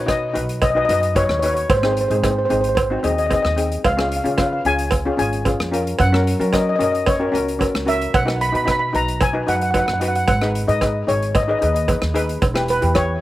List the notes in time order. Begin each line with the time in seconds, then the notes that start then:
Already playing: B2
0.06 D#4 F#4 B4 D#5, kick, cross-stick, closed hi-hat, cowbell
0.34 B1 D#4 F#4 B4, closed hi-hat
0.49 closed hi-hat
0.62 D#5, kick, closed hi-hat, cowbell
0.70 D#5
0.75 D#4 F#4 B4 D#5
0.85 F#2 D#4 D#5
0.89 F#4 B4 D#5, closed hi-hat
1.01 D#5, closed hi-hat
1.15 D#4 F#4 B4 C#5, kick, closed hi-hat, cowbell
1.24 C#5
1.29 D#2 C#5, cross-stick
1.39 D#4 F#4 C#5, closed hi-hat
1.44 B4 C#5
1.54 C#5, closed hi-hat
1.70 G#1 C5, kick, closed hi-hat, cowbell
1.77 C5
1.83 C4 D#4 G#4 C5, cross-stick
1.92 C5
1.97 closed hi-hat
2.01 C5
2.08 G#2 C4 D#4 G#4 C5, closed hi-hat
2.16 C5
2.23 C4 D#4 G#4 C5, kick, cross-stick, closed hi-hat, cowbell
2.31 C5
2.38 C5
2.45 C4 C5
2.50 G#1 D#4 G#4 C5, closed hi-hat
2.61 C5, closed hi-hat
2.69 C5
2.75 C5, kick, closed hi-hat, cowbell
2.83 C5
2.90 C4 D#4 F#4
3.03 D#2 C4 D#4 G#4 D#5, closed hi-hat
3.12 D#5
3.18 D#5, closed hi-hat
3.26 C4 D#5
3.31 D#4 G#4 D#5, kick, closed hi-hat, cowbell
3.43 D#2 D#5, cross-stick
3.56 C4 D#4 G#4, closed hi-hat
3.72 closed hi-hat
3.84 C#2 F5, kick, closed hi-hat, cowbell
3.93 F5
3.97 C#4 F4 G#4, cross-stick
4.01 F5
4.08 F5, closed hi-hat
4.16 F5
4.24 C#3 C#4 F4 G#4 F5, closed hi-hat
4.31 F5
4.37 C#4 F4 B4 F5, kick, cross-stick, closed hi-hat, cowbell
4.46 F5
4.53 F5
4.65 C#2 C#4 F4 G#4 G#5, closed hi-hat
4.79 closed hi-hat
4.91 kick, closed hi-hat, cowbell
5.05 C#4 F4 G#4
5.17 G#1 C#4 F4 G#4 G#5, closed hi-hat
5.33 closed hi-hat
5.45 C#4 F4 G#4, kick, closed hi-hat, cowbell
5.60 F2, cross-stick
5.72 C#4 F4 A#4, closed hi-hat
5.87 closed hi-hat
5.99 F#2 F#5, kick, closed hi-hat, cowbell
6.12 C#4 F#4 A#4, cross-stick
6.27 closed hi-hat
6.39 F#3 C#4 F#4 A#4, closed hi-hat
6.53 C#4 F#4 A#4 D#5, kick, cross-stick, closed hi-hat, cowbell
6.62 D#5
6.69 D#5
6.76 C#4 F#4 D#5
6.80 F#2 A#4 D#5, closed hi-hat
6.92 D#5, closed hi-hat
7.06 C#5, kick, closed hi-hat, cowbell
7.20 C#4 F#4 A#4
7.32 C#2 C#4 F#4 A#4, closed hi-hat
7.48 closed hi-hat
7.59 C#4 F#4 A#4, kick, closed hi-hat, cowbell
7.74 C#2, cross-stick
7.86 C#4 F#4 A#4 E5, closed hi-hat
8.01 closed hi-hat
8.14 B1 F#5, kick, closed hi-hat, cowbell
8.26 D#4 F#4 B4, cross-stick
8.41 B5, closed hi-hat
8.49 D#4 B5
8.54 B2 F#4 B4 B5, closed hi-hat
8.64 D#4 F#4 B4 B5, kick, cross-stick, closed hi-hat, cowbell
8.71 B5
8.79 B5
8.93 B1 D#4 F#4 B4 A#5, closed hi-hat
9.08 closed hi-hat
9.21 G#5, kick, closed hi-hat, cowbell
9.33 D#4 F#4 B4
9.47 F#2 D#4 F#4 B4 F#5, closed hi-hat
9.56 F#5
9.61 F#5, closed hi-hat
9.71 D#4 F#5, kick, closed hi-hat, cowbell
9.75 F#4 B4
9.79 F#5
9.86 F#2 F#5, cross-stick
9.94 F#5
10.00 D#4 F#4 B4 F#5, closed hi-hat
10.08 F#5
10.15 F#5, closed hi-hat
10.28 G#1 F#5, kick, closed hi-hat, cowbell
10.42 D#4 G#4 B4, cross-stick
10.55 closed hi-hat
10.68 G#2 D#4 G#4 B4 D#5, closed hi-hat
10.81 D#4 G#4 B4, kick, cross-stick, closed hi-hat, cowbell
11.07 G#1 D#4 G#4 C#5, closed hi-hat
11.22 closed hi-hat
11.35 D#5, kick, closed hi-hat, cowbell
11.43 D#5
11.48 D#4 G#4 B4 D#5
11.59 D#2 D#4 G#4 B4 D#5, closed hi-hat
11.67 D#5
11.74 D#5, closed hi-hat
11.88 D#4 G#4 B4, kick, closed hi-hat, cowbell
12.02 D#2, cross-stick
12.14 D#4 G#4 B4, closed hi-hat
12.29 closed hi-hat
12.42 E1, kick, closed hi-hat, cowbell
12.54 E4 G4 B4, cross-stick
12.68 B4, closed hi-hat
12.81 E2 E4 G4 B4, closed hi-hat
12.94 E4 G4 B4 C#5, kick, cross-stick, closed hi-hat, cowbell